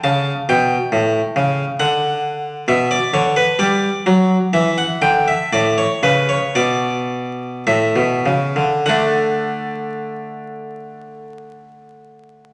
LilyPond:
<<
  \new Staff \with { instrumentName = "Harpsichord" } { \time 3/4 \key d \major \tempo 4 = 60 a''8 g''4. fis''4 | e''16 d''16 cis''16 b'16 d''4 e''16 fis''16 g''16 e''16 | d''16 cis''16 b'16 cis''16 d''4 e''4 | <a d' fis''>2. | }
  \new Staff \with { instrumentName = "Harpsichord" } { \clef bass \time 3/4 \key d \major cis8 b,8 a,8 cis8 d4 | b,8 d8 g8 fis8 e8 d8 | a,8 cis8 b,4 a,16 b,16 cis16 d16 | d2. | }
>>